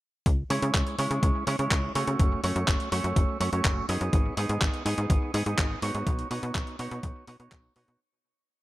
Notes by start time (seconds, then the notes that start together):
0.26 C#2, kick, closed hi-hat
0.50 C#3 G#3 C#4 E4 C#5, open hi-hat
0.62 C#3, closed hi-hat
0.74 C#2, kick, clap, closed hi-hat
0.87 closed hi-hat
0.98 C#3 G#3 C#4 E4 C#5, open hi-hat
1.11 C#3, closed hi-hat
1.23 C#2, kick, closed hi-hat
1.47 C#3 G#3 C#4 E4 C#5, open hi-hat
1.59 C#3 G#3 C#4 E4 C#5, closed hi-hat
1.71 C#2, kick, clap, closed hi-hat
1.95 C#3 A3 C#4 F#4 C#5, open hi-hat
2.07 C#3, closed hi-hat
2.19 F#1, kick, closed hi-hat
2.44 F#2 A3 C#4 F#4 C#5, open hi-hat
2.56 F#2, closed hi-hat
2.68 F#1, kick, clap, closed hi-hat
2.80 closed hi-hat
2.92 F#2 A3 C#4 F#4 C#5, open hi-hat
3.04 F#2, closed hi-hat
3.16 F#1, kick, closed hi-hat
3.40 F#2 A3 C#4 F#4 C#5, open hi-hat
3.52 F#2 A3 C#4 F#4 C#5, closed hi-hat
3.65 F#1, kick, clap, closed hi-hat
3.89 F#2 B3 D#4 G#4 D#5, open hi-hat
4.01 F#2, closed hi-hat
4.13 G#1, kick, closed hi-hat
4.37 G#2 B3 D#4 G#4 D#5, open hi-hat
4.49 G#2, closed hi-hat
4.61 G#1, kick, clap, closed hi-hat
4.74 closed hi-hat
4.85 G#2 B3 D#4 G#4 D#5, open hi-hat
4.98 G#2, closed hi-hat
5.10 G#1, kick, closed hi-hat
5.34 G#2 B3 D#4 G#4 D#5, open hi-hat
5.46 G#2 B3 D#4 G#4 D#5, closed hi-hat
5.58 G#1, kick, clap, closed hi-hat
5.82 G#2 B3 D#4 F#4 C#5, open hi-hat
5.95 G#2, closed hi-hat
6.07 B1, kick, closed hi-hat
6.19 closed hi-hat
6.30 B2 B3 D#4 F#4 C#5, open hi-hat
6.43 B2, closed hi-hat
6.55 B1, kick, clap, closed hi-hat
6.67 closed hi-hat
6.79 B2 B3 D#4 F#4 C#5, open hi-hat
6.91 B2, closed hi-hat
7.03 B1, kick, closed hi-hat
7.27 B2 B3 D#4 F#4 C#5, open hi-hat
7.40 B2 B3 D#4 F#4 C#5, closed hi-hat
7.52 B1, kick, clap, closed hi-hat
7.76 B2 B3 D#4 F#4 C#5, open hi-hat
7.88 B2, closed hi-hat